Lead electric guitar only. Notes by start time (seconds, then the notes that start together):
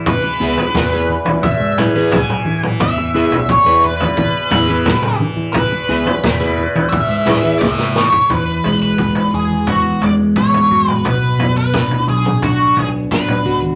0.07 B4
1.44 E5
1.78 G#5
2.12 G#5
2.81 E5
3.50 C#5
3.84 B4
4.51 B4
5.53 B4
6.89 E5
7.29 D5
7.59 C#5 E5
8.31 B4
8.83 B4
9.34 G#4
9.69 F#4
10.03 D5
10.37 C#5
10.90 B4
11.06 B4
11.57 B4
12.09 G#4
12.44 F#4
12.79 G#4
13.12 B4